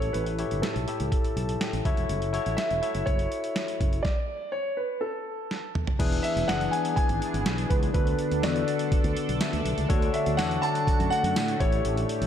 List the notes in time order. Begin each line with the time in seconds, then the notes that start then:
Already playing: A2 E4 G4 A4 C#5
0.02 closed hi-hat
0.13 A1 B4, closed hi-hat
0.26 closed hi-hat
0.39 E4 G4 A4 C#5, closed hi-hat
0.51 G1, closed hi-hat
0.62 A4, snare, closed hi-hat
0.75 B1, closed hi-hat
0.88 E4 G4 A4 E5, closed hi-hat
1.00 C#2, closed hi-hat
1.12 kick, closed hi-hat
1.24 closed hi-hat
1.36 B1 A5, closed hi-hat
1.49 closed hi-hat
1.61 G5, snare, closed hi-hat
1.73 A1, closed hi-hat
1.85 F#1 E4 F#4 A4 C#5 E5, kick, closed hi-hat
1.97 E1, closed hi-hat
2.09 F#1, closed hi-hat
2.22 closed hi-hat
2.33 E4 F#4 A4 C#5, closed hi-hat
2.46 A1, closed hi-hat
2.57 E5, snare, closed hi-hat
2.70 E1, closed hi-hat
2.82 E4 F#4 A4 C#5, closed hi-hat
2.95 F#1, closed hi-hat
3.06 F#1 C#5, kick, closed hi-hat
3.19 closed hi-hat
3.32 closed hi-hat
3.44 closed hi-hat
3.56 snare, closed hi-hat
3.68 closed hi-hat
3.80 F#1, kick, closed hi-hat
3.93 closed hi-hat
4.03 D5, kick, snare
4.52 C#5
4.77 B4
5.01 A4
5.51 snare
5.75 mid tom
5.87 floor tom
5.99 E1 E3 B3 D4 E4 G#4 B4, kick, closed hi-hat, crash
6.12 closed hi-hat
6.23 E5, closed hi-hat
6.36 E1, closed hi-hat
6.47 F#1 D4 E4 G#4 B4 F#5, snare, closed hi-hat
6.61 closed hi-hat
6.71 G#5, closed hi-hat
6.85 closed hi-hat
6.96 G#5, kick, closed hi-hat
7.09 G#1, closed hi-hat
7.22 closed hi-hat
7.34 G#1, closed hi-hat
7.46 B1, snare, closed hi-hat
7.58 closed hi-hat
7.70 C#2 B4, kick, closed hi-hat
7.83 closed hi-hat
7.94 D2 D3 D4 F#4 A4 B4, kick, closed hi-hat
8.07 closed hi-hat
8.19 closed hi-hat
8.31 D2, closed hi-hat
8.43 E2 D4 F#4 A4 B4 D5, snare, closed hi-hat, tambourine
8.56 closed hi-hat
8.68 closed hi-hat
8.79 closed hi-hat
8.92 kick, closed hi-hat
9.04 D2, closed hi-hat
9.17 closed hi-hat
9.29 B1, closed hi-hat
9.41 E5, snare, closed hi-hat, tambourine
9.53 D2, closed hi-hat
9.65 B1, closed hi-hat
9.77 C#2, closed hi-hat
9.89 D2 D3 A3 D4 F#4 A4 C#5, kick, closed hi-hat
10.02 closed hi-hat
10.14 E5, closed hi-hat
10.26 D2, closed hi-hat
10.37 E2 D4 F#4 A4 C#5 F#5, snare, closed hi-hat, tambourine
10.45 D5
10.51 closed hi-hat
10.62 A5, closed hi-hat
10.75 closed hi-hat
10.87 kick, closed hi-hat
10.99 F#2, closed hi-hat
11.10 F#5, closed hi-hat
11.23 F#2, closed hi-hat
11.36 A2, snare, closed hi-hat, tambourine
11.48 closed hi-hat
11.60 A1 A2 E4 G4 A4 C#5, kick, closed hi-hat
11.72 closed hi-hat
11.85 A1, closed hi-hat
11.97 closed hi-hat
12.09 closed hi-hat
12.21 A1, closed hi-hat